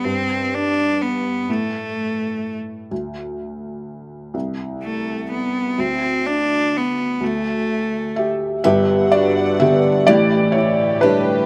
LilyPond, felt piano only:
<<
  \new Staff \with { instrumentName = "Felt piano" } { \time 6/8 \key g \major \tempo 4. = 42 r2. | r2. | r2 r8 <g' e''>8 | <g' e''>8 <fis' d''>8 <g' e''>8 <g' d''>8 <e' cis''>8 <d' b'>8 | }
  \new Staff \with { instrumentName = "Felt piano" } { \clef bass \time 6/8 \key g \major g,4. a,4. | d,4. c,4. | d,4. d,4. | <g,, g,>4 <d g b>8 <a,, a,>4 <g a cis''>8 | }
>>